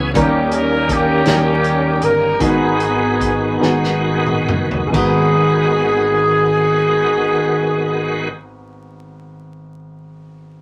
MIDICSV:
0, 0, Header, 1, 6, 480
1, 0, Start_track
1, 0, Key_signature, 5, "minor"
1, 0, Tempo, 749064
1, 98, Time_signature, 6, 3, 24, 8
1, 1541, Tempo, 820793
1, 2501, Tempo, 916031
1, 5944, End_track
2, 0, Start_track
2, 0, Title_t, "Horn section"
2, 0, Program_c, 0, 61
2, 119, Note_on_c, 0, 67, 80
2, 120, Note_on_c, 0, 58, 59
2, 124, Note_on_c, 0, 61, 59
2, 327, Note_off_c, 0, 67, 0
2, 340, Note_on_c, 0, 70, 82
2, 572, Note_off_c, 0, 70, 0
2, 574, Note_off_c, 0, 58, 0
2, 575, Note_off_c, 0, 61, 0
2, 577, Note_on_c, 0, 67, 86
2, 582, Note_on_c, 0, 58, 58
2, 583, Note_on_c, 0, 61, 63
2, 1273, Note_off_c, 0, 58, 0
2, 1274, Note_off_c, 0, 61, 0
2, 1297, Note_off_c, 0, 67, 0
2, 1307, Note_on_c, 0, 70, 74
2, 1548, Note_off_c, 0, 70, 0
2, 1550, Note_on_c, 0, 68, 76
2, 1555, Note_on_c, 0, 63, 53
2, 1556, Note_on_c, 0, 59, 53
2, 2484, Note_off_c, 0, 63, 0
2, 2485, Note_off_c, 0, 59, 0
2, 2505, Note_off_c, 0, 68, 0
2, 2983, Note_on_c, 0, 68, 72
2, 4743, Note_off_c, 0, 68, 0
2, 5944, End_track
3, 0, Start_track
3, 0, Title_t, "Grand piano"
3, 0, Program_c, 1, 0
3, 0, Control_c, 1, 64, 127
3, 0, Note_on_c, 1, 56, 56
3, 0, Note_on_c, 1, 59, 51
3, 0, Note_on_c, 1, 61, 55
3, 0, Note_on_c, 1, 64, 53
3, 0, Note_on_c, 1, 66, 61
3, 89, Note_on_c, 1, 55, 68
3, 97, Note_on_c, 1, 58, 62
3, 99, Note_on_c, 1, 51, 54
3, 100, Note_off_c, 1, 61, 0
3, 100, Note_on_c, 1, 61, 65
3, 105, Note_on_c, 1, 63, 61
3, 107, Control_c, 1, 64, 0
3, 108, Note_on_c, 1, 70, 73
3, 109, Note_off_c, 1, 56, 0
3, 111, Note_off_c, 1, 64, 0
3, 111, Note_off_c, 1, 66, 0
3, 113, Note_off_c, 1, 59, 0
3, 208, Control_c, 1, 64, 127
3, 603, Note_off_c, 1, 55, 0
3, 607, Note_off_c, 1, 58, 0
3, 609, Note_off_c, 1, 61, 0
3, 611, Note_off_c, 1, 63, 0
3, 613, Note_off_c, 1, 70, 0
3, 782, Note_off_c, 1, 51, 0
3, 794, Note_on_c, 1, 55, 58
3, 802, Note_on_c, 1, 58, 55
3, 807, Note_on_c, 1, 61, 51
3, 812, Note_on_c, 1, 63, 53
3, 814, Note_on_c, 1, 67, 63
3, 1327, Note_off_c, 1, 55, 0
3, 1330, Note_off_c, 1, 58, 0
3, 1333, Note_off_c, 1, 61, 0
3, 1335, Note_off_c, 1, 63, 0
3, 1336, Note_off_c, 1, 67, 0
3, 1532, Note_on_c, 1, 56, 65
3, 1534, Note_on_c, 1, 59, 58
3, 1539, Note_on_c, 1, 63, 60
3, 1541, Note_on_c, 1, 44, 54
3, 1544, Note_on_c, 1, 66, 59
3, 1548, Control_c, 1, 64, 0
3, 1550, Note_on_c, 1, 70, 57
3, 1586, Note_on_c, 1, 71, 72
3, 1587, Note_off_c, 1, 70, 0
3, 1635, Control_c, 1, 64, 127
3, 2045, Note_off_c, 1, 56, 0
3, 2046, Note_off_c, 1, 59, 0
3, 2048, Note_off_c, 1, 63, 0
3, 2050, Note_off_c, 1, 66, 0
3, 2071, Note_off_c, 1, 71, 0
3, 2228, Note_off_c, 1, 44, 0
3, 2241, Note_on_c, 1, 56, 61
3, 2243, Note_on_c, 1, 59, 58
3, 2246, Note_on_c, 1, 63, 58
3, 2253, Note_on_c, 1, 66, 57
3, 2256, Note_on_c, 1, 68, 72
3, 2765, Note_off_c, 1, 56, 0
3, 2766, Note_off_c, 1, 59, 0
3, 2767, Note_off_c, 1, 63, 0
3, 2770, Note_off_c, 1, 66, 0
3, 2771, Note_off_c, 1, 68, 0
3, 2932, Note_on_c, 1, 56, 68
3, 2948, Note_on_c, 1, 59, 60
3, 2960, Note_on_c, 1, 32, 64
3, 2961, Note_on_c, 1, 63, 58
3, 2975, Control_c, 1, 64, 0
3, 2978, Note_on_c, 1, 66, 61
3, 2990, Note_on_c, 1, 71, 73
3, 3075, Control_c, 1, 64, 127
3, 4693, Note_off_c, 1, 56, 0
3, 4708, Note_off_c, 1, 59, 0
3, 4721, Note_off_c, 1, 32, 0
3, 4722, Note_off_c, 1, 63, 0
3, 4738, Note_off_c, 1, 66, 0
3, 4751, Note_off_c, 1, 71, 0
3, 5944, End_track
4, 0, Start_track
4, 0, Title_t, "Tonewheel organ"
4, 0, Program_c, 2, 16
4, 0, Note_on_c, 2, 52, 51
4, 0, Note_on_c, 2, 59, 49
4, 0, Note_on_c, 2, 61, 49
4, 0, Note_on_c, 2, 68, 63
4, 71, Note_off_c, 2, 68, 0
4, 72, Note_off_c, 2, 59, 0
4, 72, Note_off_c, 2, 61, 0
4, 73, Note_off_c, 2, 52, 0
4, 89, Note_on_c, 2, 58, 47
4, 91, Note_on_c, 2, 61, 52
4, 92, Note_on_c, 2, 66, 49
4, 96, Note_on_c, 2, 51, 54
4, 135, Note_on_c, 2, 67, 61
4, 137, Note_off_c, 2, 66, 0
4, 1511, Note_off_c, 2, 58, 0
4, 1512, Note_off_c, 2, 61, 0
4, 1514, Note_off_c, 2, 51, 0
4, 1534, Note_off_c, 2, 67, 0
4, 1538, Note_on_c, 2, 51, 55
4, 1540, Note_on_c, 2, 56, 48
4, 1540, Note_on_c, 2, 59, 51
4, 1542, Note_on_c, 2, 64, 47
4, 1579, Note_on_c, 2, 66, 59
4, 1582, Note_off_c, 2, 64, 0
4, 2946, Note_off_c, 2, 51, 0
4, 2947, Note_off_c, 2, 56, 0
4, 2947, Note_off_c, 2, 59, 0
4, 2956, Note_off_c, 2, 66, 0
4, 2960, Note_on_c, 2, 56, 58
4, 2962, Note_on_c, 2, 51, 63
4, 2962, Note_on_c, 2, 66, 69
4, 2963, Note_on_c, 2, 59, 57
4, 4721, Note_off_c, 2, 56, 0
4, 4723, Note_off_c, 2, 51, 0
4, 4723, Note_off_c, 2, 66, 0
4, 4724, Note_off_c, 2, 59, 0
4, 5944, End_track
5, 0, Start_track
5, 0, Title_t, "Fingered electric bass"
5, 0, Program_c, 3, 33
5, 0, Note_on_c, 3, 37, 76
5, 83, Note_off_c, 3, 37, 0
5, 102, Note_on_c, 3, 39, 84
5, 783, Note_off_c, 3, 39, 0
5, 817, Note_on_c, 3, 39, 80
5, 1272, Note_off_c, 3, 39, 0
5, 1296, Note_on_c, 3, 31, 70
5, 1523, Note_off_c, 3, 31, 0
5, 1542, Note_on_c, 3, 32, 81
5, 2229, Note_off_c, 3, 32, 0
5, 2258, Note_on_c, 3, 32, 68
5, 2713, Note_off_c, 3, 32, 0
5, 2735, Note_on_c, 3, 30, 69
5, 2952, Note_off_c, 3, 30, 0
5, 2971, Note_on_c, 3, 32, 74
5, 4732, Note_off_c, 3, 32, 0
5, 5944, End_track
6, 0, Start_track
6, 0, Title_t, "Drums"
6, 95, Note_on_c, 9, 42, 75
6, 98, Note_on_c, 9, 36, 93
6, 159, Note_off_c, 9, 42, 0
6, 162, Note_off_c, 9, 36, 0
6, 329, Note_on_c, 9, 42, 50
6, 393, Note_off_c, 9, 42, 0
6, 569, Note_on_c, 9, 36, 75
6, 571, Note_on_c, 9, 42, 61
6, 633, Note_off_c, 9, 36, 0
6, 635, Note_off_c, 9, 42, 0
6, 804, Note_on_c, 9, 42, 73
6, 813, Note_on_c, 9, 38, 98
6, 868, Note_off_c, 9, 42, 0
6, 878, Note_off_c, 9, 38, 0
6, 1052, Note_on_c, 9, 42, 44
6, 1116, Note_off_c, 9, 42, 0
6, 1291, Note_on_c, 9, 42, 60
6, 1355, Note_off_c, 9, 42, 0
6, 1539, Note_on_c, 9, 42, 75
6, 1542, Note_on_c, 9, 36, 90
6, 1597, Note_off_c, 9, 42, 0
6, 1600, Note_off_c, 9, 36, 0
6, 1772, Note_on_c, 9, 42, 47
6, 1830, Note_off_c, 9, 42, 0
6, 2010, Note_on_c, 9, 36, 73
6, 2012, Note_on_c, 9, 42, 56
6, 2068, Note_off_c, 9, 36, 0
6, 2071, Note_off_c, 9, 42, 0
6, 2255, Note_on_c, 9, 38, 50
6, 2314, Note_off_c, 9, 38, 0
6, 2379, Note_on_c, 9, 38, 44
6, 2437, Note_off_c, 9, 38, 0
6, 2615, Note_on_c, 9, 47, 60
6, 2667, Note_off_c, 9, 47, 0
6, 2731, Note_on_c, 9, 45, 78
6, 2783, Note_off_c, 9, 45, 0
6, 2850, Note_on_c, 9, 43, 66
6, 2902, Note_off_c, 9, 43, 0
6, 2968, Note_on_c, 9, 36, 75
6, 2968, Note_on_c, 9, 55, 67
6, 3021, Note_off_c, 9, 36, 0
6, 3021, Note_off_c, 9, 55, 0
6, 5944, End_track
0, 0, End_of_file